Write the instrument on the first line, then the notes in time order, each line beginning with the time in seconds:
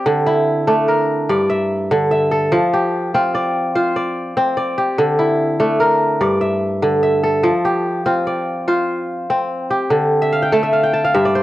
kora
Already playing: C4 F4 G4 D5
0.06 D3
0.26 E4
0.67 A3 D4
0.88 A#4
1.29 G2 D5
1.50 E5
1.91 D3
2.11 E5
2.31 A4
2.52 F3
2.73 G4
3.14 C4 F4
3.35 D5
3.75 F4 C5
3.96 D5
4.37 C4
4.57 D5
4.78 G4
4.98 D3
5.19 E4
5.60 A3 D4
5.80 A#4
6.21 G2 D5
6.41 E5
6.82 D3
7.03 E5
7.24 A4
7.43 F3
7.65 G4
8.06 C4 F4
8.27 D5
8.68 F4 C5
9.30 C4
9.70 G4
9.90 D3
10.22 E5
10.33 F5
10.42 G5
10.52 A3 A5
10.63 E5
10.73 F5
10.83 G5
10.93 A5
11.04 F5
11.14 G2 E5
11.25 D5
11.35 C5